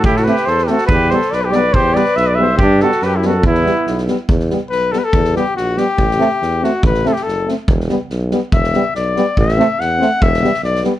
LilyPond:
<<
  \new Staff \with { instrumentName = "Trumpet" } { \time 2/4 \key e \minor \tempo 4 = 141 g'16 a'16 b'8 c''16. b'32 a'8 | b'8 c''8 d''16 b'16 d''8 | c''8 d''8 e''16 d''16 e''8 | g'8 a'8 b'16 g'16 a'8 |
e'4. r8 | r2 | r2 | r2 |
r2 | r2 | r2 | r2 |
r2 | }
  \new Staff \with { instrumentName = "Flugelhorn" } { \time 2/4 \key e \minor e'16 fis'16 g'8 a'16. g'32 fis'8 | g'8 a'8 b'16 g'16 b'8 | g'8 b'8 b'16 b'16 c''8 | d'8 fis'8 g'16 e'16 fis'8 |
b4. r8 | r4 \tuplet 3/2 { b'8. a'16 b'16 a'16~ } | a'8 g'8 fis'8 g'8~ | g'4. fis'8 |
\tuplet 3/2 { b'8. a'16 g'16 a'16~ } a'8 r8 | r2 | e''4 d''4 | e''4 fis''4 |
e''4 d''8 r8 | }
  \new Staff \with { instrumentName = "French horn" } { \time 2/4 \key e \minor r8 c'8 r8 c'8 | r8 b8 r8 b8 | r8 b8 r8 b8 | r8 b8 r8 b8 |
r8 b8 r8 b8 | r8 b8 r8 b8 | r8 b8 r8 b8 | r8 c'8 r8 c'8 |
r8 c'8 r8 c'8 | r8 b8 r8 b8 | r8 b8 r8 b8 | r8 c'8 r8 c'8 |
r8 b8 r8 b8 | }
  \new Staff \with { instrumentName = "Euphonium" } { \clef bass \time 2/4 \key e \minor r8 a8 r8 a8 | r8 g8 r8 g8 | r8 g8 r8 g8 | r8 g8 r8 g8 |
r8 g8 r8 g8 | r8 g8 r8 g8 | r8 g8 r8 g8 | r8 a8 r8 a8 |
r8 a8 r8 a8 | r8 g8 r8 g8 | r8 g8 r8 g8 | r8 a8 r8 a8 |
r8 g8 r8 g8 | }
  \new Staff \with { instrumentName = "Tuba" } { \clef bass \time 2/4 \key e \minor a,4 e,4 | e,4 b,,4 | e,4 b,,4 | g,4 fis,4 |
e,4 b,,4 | e,4 b,,4 | e,4 ais,,4 | a,,4 e,4 |
a,,4 fis,,4 | e,,4 b,,4 | e,,4 b,,4 | a,,4 e,4 |
e,,4 b,,4 | }
  \new DrumStaff \with { instrumentName = "Drums" } \drummode { \time 2/4 bd16 sn16 sn16 sn16 sn16 sn16 sn16 sn16 | bd8 sn16 sn16 sn8 sn8 | bd8 sn16 sn16 sn4 | bd8 sn16 sn16 sn8 sn8 |
bd16 sn16 sn8 sn16 sn16 sn8 | bd16 sn16 sn8 sn8 sn8 | bd16 sn16 sn8 sn8 sn8 | bd16 sn16 sn8 sn8 sn8 |
bd16 sn16 sn16 sn16 sn8 sn8 | bd16 sn16 sn8 sn8 sn8 | bd16 sn16 sn8 sn8 sn8 | bd16 sn16 sn8 sn8 sn8 |
bd16 sn16 sn16 sn16 sn16 sn16 sn8 | }
>>